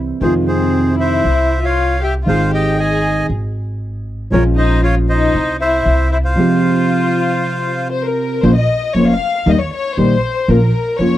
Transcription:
Already playing: C2 C3 E3 G3 C4 E4
0.20 F2 C3 D#3 G#3 C4 F4 G#4 C5
0.46 C4 G#4 C5
0.98 E4 C5 E5
1.25 C2
1.63 F4 C#5 F5
2.01 G4 E5 G5
2.26 G#1 D#3 G#3 C4 D#4 F4 G#4 C5 F5
2.53 G4 D#5 G5
2.78 G#4 D#5 G#5
3.30 G#1
4.30 A#1 F3 G#3 C#4 F4 A#4 C#5
4.57 D#4 C5 D#5
4.83 F4 C#5 F5
5.09 D#4 C5 D#5
5.34 C2
5.61 E4 C5 E5
5.86 C2
6.11 E4 C5 E5
6.24 F4 C5 F5
6.35 C3 F3 G#3 C4 G4
7.91 C5
8.04 A#4
8.43 A#1 F3 A#3 C#4 F4 C5
8.55 D#5
8.94 F1 F3 A#3 C#4 F4 C5 C#5
9.07 F5
9.46 D#2 D#3 G3 A#3 D#4 G4 D#5
9.59 C#5
9.71 C#5
9.96 A#1 D#3 G3 A#3 D#4 G4 C5
10.48 A#1 F3 A#3 C#4 F4 A#4
10.99 F1 F3 A#3 C#4 F4 C#5

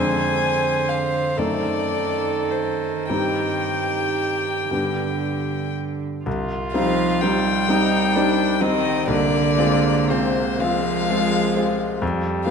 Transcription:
Already playing: F2 D3 G#3 C4 D4 C5 G#5
0.90 F5
1.37 F#2 D#3 A3 C4 D#4 A4 D5
2.51 C5
3.09 G2 G3 C4 D#4 G4 G5
4.71 G2 D3 G3 B3 D4
6.26 C2 F4
6.73 F3 G3 C4 D#4 F5
7.22 G3 C4 D#4 G5
7.69 G3 C4 D#4
8.16 G3 C4 D4 D#4
8.61 D#3 G3 C4 D#4 D#5
9.08 C2 D3 A#3 D5
9.58 G#3 C4 F4
10.10 C3 G#3 C4 F4 C5
10.60 F3 G#3 C4 F4 F5
11.10 G#3 C4 F4
11.56 G#3 C4 F4
12.02 F2 G3
12.46 G3 B3 G4 F5

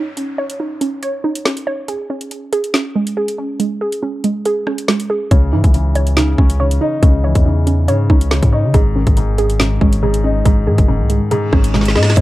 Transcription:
Already playing: C#4 D#4 C#5, downlifter
0.17 C#4, closed hi-hat
0.38 C#5
0.50 closed hi-hat
0.60 D#4
0.81 C#4, closed hi-hat
1.03 C#5, closed hi-hat
1.24 D#4
1.35 closed hi-hat
1.46 C#4, snare
1.57 closed hi-hat
1.67 C#5
1.88 G#4, closed hi-hat
2.10 C#4
2.21 closed hi-hat
2.31 closed hi-hat
2.53 G#4, closed hi-hat
2.64 closed hi-hat
2.74 C#4, snare
2.95 G#3
3.07 closed hi-hat
3.17 G#4
3.28 closed hi-hat
3.38 C#4
3.60 G#3, closed hi-hat
3.81 G#4
3.92 closed hi-hat
4.03 C#4
4.24 G#3, closed hi-hat
4.45 G#4, closed hi-hat
4.67 C#4, cross-stick
4.78 closed hi-hat
4.88 G#3, snare
5.00 closed hi-hat
5.10 G#4
5.31 C#2 C#3 C#5, kick, closed hi-hat
5.53 G#2 E3 D#4
5.64 C#2, kick, closed hi-hat
5.74 C#3, closed hi-hat
5.95 C#5, closed hi-hat
6.07 closed hi-hat
6.17 C#3 D#4, snare
6.38 C#2 C#4, kick
6.50 closed hi-hat
6.60 C#3 C#5
6.71 closed hi-hat
6.81 D#4
7.03 C#2 C#3 C#4, kick, closed hi-hat
7.24 E3 C#5
7.35 E2, kick, closed hi-hat
7.45 C#3 D#4
7.67 C#4, closed hi-hat
7.88 G#2 C#3 C#5, closed hi-hat
8.10 C#2 C#4 D#4, kick
8.21 closed hi-hat
8.31 C#3 C#4, snare
8.43 G#2, kick, closed hi-hat
8.53 D#4 C#5
8.64 C#3
8.74 G#1 G#2 G#4, kick, closed hi-hat
8.96 D#3 C#4
9.07 G#1, kick, closed hi-hat
9.17 G#2, closed hi-hat
9.38 G#4, closed hi-hat
9.50 closed hi-hat
9.60 G#2 C#4, snare
9.81 G#1 G#3 C#4, kick
9.93 closed hi-hat
10.03 G#2 G#4
10.14 closed hi-hat
10.24 C#4 D#4
10.45 G#1 G#2 G#3, kick, closed hi-hat
10.67 G#2 D#3 G#4
10.78 F#1, kick, closed hi-hat
10.88 G#2 C#4
11.00 C2
11.10 G#3, closed hi-hat
11.31 G#2 G#4, closed hi-hat, reverse cymbal
11.53 G#1 C#4, kick, cross-stick
11.64 closed hi-hat
11.74 G#2 G#3, snare
11.81 snare
11.85 snare, closed hi-hat
11.95 G#2 D#4 G#4, snare
12.03 snare
12.10 snare
12.17 C#2 C#3 C#5, kick, closed hi-hat, impact

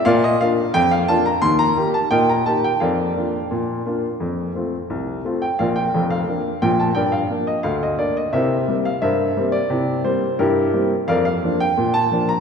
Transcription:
0.05 A#2 A#4 D5 F5
0.24 D#5
0.41 A#3 D4 F4 F5
0.74 F2 G5
0.91 F5
1.08 A#3 D4 F4 A5
1.26 A#5
1.42 D#2 C6
1.59 A#5
1.77 A#3 D#4 G4
1.94 A5
2.11 A#2 A#4 D#5 G5
2.29 A#5
2.46 A#3 D#4 G4 A5
2.64 G5
2.80 F2 A#4 D5 F5
3.16 A#3 D4 F4
3.51 A#2
3.86 A#3 D4 F4
4.20 F2
4.55 A3 C4 F4
4.90 C2
5.25 A3 C4 F4
5.42 G5
5.59 A#1 A#2 A#4 D5 F5
5.76 G5
5.94 F1 F2
6.10 F5
6.28 A#3 D4
6.62 A#1 A#2 G5
6.80 A5
6.95 G2 A#3 A#4 D5 G5
7.12 F5
7.30 A#3 D4
7.47 D#5
7.63 D2 F5
7.83 D#5
7.99 A#3 D4 D5
8.17 D#5
8.33 C3 E4 A#4 C5 E5
8.68 G3 A#3 C4
8.85 F5
9.02 G2 A#4 C5 E5
9.37 G3 A#3 C4
9.52 D5
9.70 C3 E4
10.04 G3 A#3 C4 C5
10.39 G2 E4 G4 A#4
10.74 G3 A#3 C4
11.08 F2 A#4 D5 F5
11.25 F5
11.43 F3 A#3 D4
11.60 G5
11.78 A#2
11.94 A5
12.12 F3 A#3 D4
12.29 A#5

